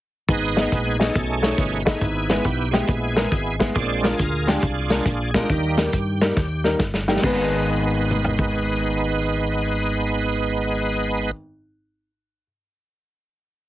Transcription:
0.29 fingered electric bass G#1, upright piano G#2, tonewheel organ G#3 B3 D#4 G#4 B4 D#5, kick, closed hi-hat
0.56 upright piano B3 D#4 G#4 D#5, snare, closed hi-hat
0.68 fingered electric bass A#1, tonewheel organ A#4 B4, closed hi-hat
0.72 kick
0.99 upright piano B3 D#4 G#4 D#5, tonewheel organ C#4 D#4 A4, snare, closed hi-hat
1.14 fingered electric bass B1, upright piano B2, tonewheel organ A3 C#4 D#4 G#4, kick, closed hi-hat
1.42 upright piano A3 D#4 G#4 C#5, snare, closed hi-hat
1.57 fingered electric bass G1, tonewheel organ B4, kick, closed hi-hat
1.85 upright piano A3 D#4 G#4 D#5, tonewheel organ B3 E4 G#4, kick, snare, closed hi-hat
2.01 fingered electric bass G#1, upright piano G#2, kick, closed hi-hat
2.30 upright piano G#3 B3 E4 B4, snare, closed hi-hat
2.44 fingered electric bass B1, tonewheel organ G4, kick, closed hi-hat
2.71 tonewheel organ G#3 B3 E4 G#4, upright piano G#3 B3 E4 G4, snare, closed hi-hat
2.87 fingered electric bass A#1, kick, closed hi-hat
3.16 upright piano G#3 B3 E4 A#4, snare, closed hi-hat
3.32 fingered electric bass G#1, kick, closed hi-hat
3.59 upright piano G#3 B3 E4 G#4, kick, snare, closed hi-hat
3.74 fingered electric bass A#1, upright piano A#2, tonewheel organ G#3 C4 D4 F4 G#4 D5, kick, closed hi-hat
4.03 upright piano G#3 D4 F4 A#4, snare, closed hi-hat
4.19 fingered electric bass D2, tonewheel organ A#4, kick, closed hi-hat
4.47 upright piano G#3 D4 F4 G4, tonewheel organ D4 F4 G#4, snare, closed hi-hat
4.62 fingered electric bass C2, kick, closed hi-hat
4.90 upright piano G#3 D4 F4 A#4, snare, closed hi-hat
5.05 fingered electric bass A#1, kick, closed hi-hat
5.34 upright piano G#3 D4 F4 A#4, tonewheel organ A#3 D#4 G4, kick, snare, closed hi-hat
5.49 fingered electric bass D#2, upright piano D#3, tonewheel organ G3 A#3 D#4, kick, closed hi-hat
5.77 upright piano G3 A#3 D#4 A#4, snare, closed hi-hat
5.93 fingered electric bass G2, kick, closed hi-hat
6.21 upright piano G3 A#3 D#4 A#4, snare, closed hi-hat
6.36 fingered electric bass D#2, kick, snare
6.64 upright piano G3 A#3 D#4 A#4, snare
6.79 fingered electric bass G1, kick, snare
6.94 snare
7.08 upright piano G3 A#3 D#4 G4, snare
7.16 snare
7.22 fingered electric bass G#1, upright piano G#1 G#3 B3 D#4, tonewheel organ G#3 B3 D#4 B4, kick, crash
7.26 upright piano B4
8.11 mid tom
8.24 floor tom
8.39 kick

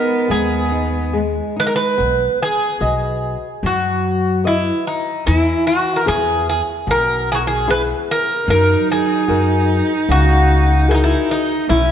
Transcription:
Already playing: cello B3, nylon-string guitar D#4, bouzouki A#4
0.28 upright bass D#2, nylon-string guitar G#3, bouzouki G#4
0.72 nylon-string guitar D#4
1.13 nylon-string guitar G#3, cello G#3
1.56 nylon-string guitar D#4, bouzouki B4
1.67 bouzouki A#4
1.76 bouzouki B4
1.98 upright bass B1, nylon-string guitar B3
2.42 bouzouki G#4
2.81 upright bass B1, nylon-string guitar F#4 B4 D#5
3.63 upright bass F#2, nylon-string guitar F#3, bouzouki F#4
4.44 bouzouki E4, nylon-string guitar F#4 B4 D#5
4.87 bouzouki D#4
5.26 upright bass E2, nylon-string guitar E3, bouzouki E4
5.67 bouzouki F#4
5.96 bouzouki A#4
6.06 upright bass E2, nylon-string guitar E4 G#4 B4, bouzouki G#4
6.49 bouzouki G#4
6.87 upright bass B1, nylon-string guitar B2, bouzouki A#4
7.32 bouzouki F#4 G#4
7.47 bouzouki G#4
7.68 nylon-string guitar B3 E4 G#4, bouzouki B4
8.11 bouzouki A#4
8.46 upright bass F#2, nylon-string guitar F#3, cello D#4
8.50 bouzouki A#4
8.92 bouzouki G#4
9.28 upright bass F#2, nylon-string guitar F#4 G#4 A#4
10.09 upright bass C#2, nylon-string guitar C#3, bouzouki F#4
10.88 bouzouki E4, nylon-string guitar F#4 G#4 A#4
10.94 bouzouki D#4
11.04 bouzouki E4
11.31 bouzouki D#4
11.69 upright bass B1, nylon-string guitar B3, cello C#4, bouzouki E4

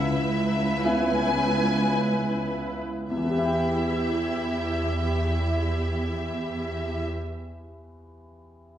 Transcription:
Already playing: grand piano C#2, cello section C#2, viola section E4 B4, violin section E5
0.84 grand piano B3 E4 E5, violin section G#5
3.10 grand piano E2, cello section E2, viola section E4 G4, violin section E5
3.17 grand piano E3
3.24 grand piano B3
3.31 grand piano G4
3.38 grand piano E5
3.44 grand piano G5

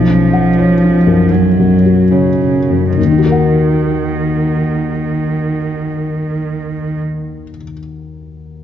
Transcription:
Already playing: felt piano B1, cello F3
0.09 felt piano C#4
0.33 felt piano F#5
0.59 felt piano C#5
0.84 felt piano C#4
1.07 felt piano F#2
1.31 cello F#3, felt piano C#4
1.59 felt piano F#2
1.86 felt piano F#4
2.12 cello C#3, felt piano C#5
2.41 felt piano C#4
2.71 felt piano F#2
2.96 felt piano D#2, cello D#3
3.04 felt piano D#3
3.11 felt piano D#4
3.18 felt piano F#4
3.26 felt piano A#4
3.32 felt piano F#5

